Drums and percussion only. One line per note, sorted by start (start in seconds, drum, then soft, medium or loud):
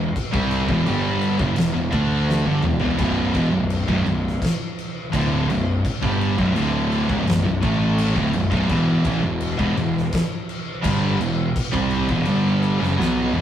0.16 kick loud
0.16 crash medium
0.34 kick loud
0.51 crash medium
0.69 kick loud
0.86 crash medium
1.21 crash medium
1.39 kick loud
1.56 snare loud
1.56 crash loud
1.92 kick loud
1.92 crash medium
2.30 snare medium
2.63 mid tom loud
2.80 floor tom loud
2.98 kick loud
2.98 crash medium
3.35 kick loud
3.35 crash medium
3.70 crash medium
3.88 kick loud
4.06 crash medium
4.27 snare soft
4.42 kick loud
4.42 snare loud
4.42 crash loud
4.79 crash medium
5.13 kick loud
5.13 crash medium
5.50 crash medium
5.85 kick loud
5.85 crash medium
6.03 kick loud
6.21 crash medium
6.39 kick loud
6.56 crash medium
6.92 crash medium
7.10 kick loud
7.27 snare loud
7.27 crash medium
7.63 kick loud
7.63 crash medium
7.98 crash loud
8.16 kick loud
8.33 crash medium
8.52 kick loud
8.69 kick loud
8.69 crash medium
9.04 kick loud
9.04 crash medium
9.41 crash medium
9.59 kick loud
9.77 crash medium
9.97 snare soft
10.13 kick loud
10.13 snare loud
10.13 crash medium
10.49 crash medium
10.84 kick loud
10.84 crash loud
11.21 crash medium
11.56 kick loud
11.56 crash loud
11.74 kick loud
11.91 crash medium
12.09 kick loud
12.25 crash medium
12.63 crash medium
12.83 snare soft
13.00 snare medium
13.16 high tom medium
13.34 mid tom medium